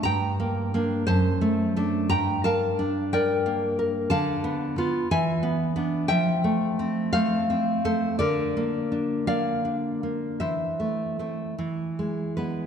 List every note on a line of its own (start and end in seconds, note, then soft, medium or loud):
0.03 1.03 G2 medium
0.03 1.03 G5 medium
0.03 1.02 A#5 loud
0.40 0.73 A#3 medium
0.74 1.04 A#3 medium
0.74 1.04 D4 medium
1.07 2.07 F#2 medium
1.07 2.05 C5 loud
1.07 2.06 A5 medium
1.41 1.75 A3 medium
1.76 2.07 A3 medium
1.76 2.07 D4 medium
2.09 4.07 G2 loud
2.09 2.42 G5 medium
2.09 2.42 A#5 loud
2.44 3.12 A#4 medium
2.44 3.08 F5 medium
2.44 3.09 A5 loud
2.79 3.79 D4 medium
3.13 3.78 A#4 medium
3.13 3.75 D5 medium
3.13 3.76 G5 loud
3.46 4.11 A#3 medium
3.79 4.11 A#4 medium
4.10 4.78 D3 loud
4.10 5.06 F5 loud
4.10 5.06 A5 loud
4.44 4.77 B3 medium
4.78 5.07 B3 medium
4.78 5.07 F4 medium
5.11 6.07 E3 loud
5.11 6.06 E5 medium
5.11 6.06 G#5 loud
5.43 5.75 B3 medium
5.76 6.06 B3 medium
5.76 6.06 D4 medium
6.08 8.14 F3 medium
6.08 7.09 E5 loud
6.08 7.08 G5 loud
6.44 7.12 A3 medium
6.79 7.49 C4 medium
7.13 7.84 A3 medium
7.13 7.80 C5 medium
7.13 7.80 F5 loud
7.50 8.19 C4 medium
7.85 8.19 A3 medium
7.85 8.17 A4 medium
7.85 8.18 C5 loud
8.19 10.37 D3 medium
8.19 9.23 A#4 medium
8.19 9.23 D5 loud
8.57 9.26 A#3 medium
8.92 9.64 D4 medium
9.27 10.02 A#3 medium
9.27 10.37 D5 medium
9.27 10.37 F5 loud
9.65 10.41 D4 medium
10.03 10.41 A#3 medium
10.40 11.54 E3 medium
10.40 12.31 C5 medium
10.40 12.31 E5 medium
10.80 11.18 A3 medium
11.19 11.54 A3 soft
11.19 11.54 C4 soft
11.58 12.66 E3 medium
11.99 12.36 G#3 soft
12.37 12.66 G#3 soft
12.37 12.66 B3 soft
12.37 12.66 B4 medium